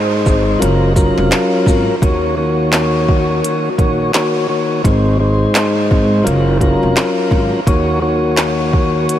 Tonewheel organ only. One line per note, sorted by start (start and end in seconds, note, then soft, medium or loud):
0.00 0.61 G#2 loud
0.00 0.61 G#3 medium
0.00 0.61 D#4 medium
0.00 0.61 C5 loud
0.59 0.93 F#3 medium
0.59 0.93 C#4 medium
0.59 0.93 F4 medium
0.59 0.93 A#4 loud
0.96 1.95 F#3 loud
0.96 1.95 C#4 medium
0.96 1.96 F4 medium
0.96 1.96 A#4 loud
2.02 2.35 D#3 medium
2.02 2.35 A#3 medium
2.02 2.35 F#4 medium
2.02 2.35 C#5 loud
2.37 3.69 D#3 medium
2.37 3.69 A#3 medium
2.37 3.69 F#4 medium
2.37 3.70 C#5 loud
3.79 4.12 D#3 loud
3.79 4.12 A#3 medium
3.79 4.12 F#4 medium
3.79 4.12 C#5 loud
4.14 4.47 D#3 medium
4.14 4.47 A#3 medium
4.14 4.47 F#4 medium
4.14 4.47 C#5 medium
4.48 4.82 D#3 medium
4.48 4.82 A#3 medium
4.48 4.82 F#4 medium
4.48 4.82 C#5 medium
4.84 5.17 G#2 medium
4.84 5.17 G#3 medium
4.84 5.17 D#4 medium
4.84 5.18 C5 medium
5.19 6.25 G#2 medium
5.19 6.26 G#3 medium
5.19 6.26 D#4 medium
5.19 6.26 C5 loud
6.23 6.57 F#3 medium
6.23 6.58 C#4 medium
6.23 6.58 F4 medium
6.23 6.58 A#4 loud
6.61 7.60 F#3 medium
6.61 7.60 C#4 medium
6.61 7.60 F4 medium
6.61 7.60 A#4 loud
7.66 7.99 D#3 medium
7.66 8.00 A#3 medium
7.66 8.00 F#4 medium
7.66 8.00 C#5 loud
8.01 9.19 D#3 medium
8.01 9.19 A#3 medium
8.01 9.19 F#4 medium
8.01 9.19 C#5 loud